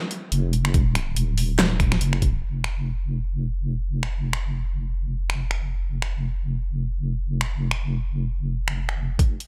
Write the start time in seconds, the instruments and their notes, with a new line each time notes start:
0.11 closed hi-hat
0.32 wobble bass F1, closed hi-hat
0.53 closed hi-hat
0.65 finger snap
0.74 kick, closed hi-hat
0.95 finger snap, closed hi-hat
1.16 wobble bass D#1, closed hi-hat
1.38 open hi-hat
1.59 snare, clap, closed hi-hat
1.80 finger snap, kick, closed hi-hat
1.92 finger snap, snare
2.01 wobble bass F1, closed hi-hat
2.13 finger snap
2.22 kick, closed hi-hat
2.43 wobble bass F1
2.64 finger snap
4.03 finger snap
4.33 finger snap
5.30 finger snap
5.51 finger snap
6.02 finger snap
7.41 finger snap
7.71 finger snap
8.68 finger snap
8.89 finger snap
9.19 wobble bass F1, kick, closed hi-hat
9.40 closed hi-hat